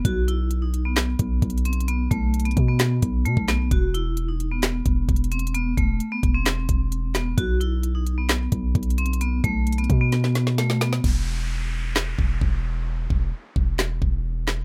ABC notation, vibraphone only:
X:1
M:4/4
L:1/16
Q:1/4=131
K:Clyd
V:1 name="Vibraphone"
F2 E3 ^D2 B,6- B, C2 | B,2 A,3 B,2 B,4- B, A,2 B,2 | F2 E3 ^D2 B,6- B, C2 | B,2 A,3 B,2 C6- C B,2 |
F2 E3 ^D2 B,6- B, C2 | B,2 A,3 B,2 B,4- B, A,2 B,2 | z16 | z16 |]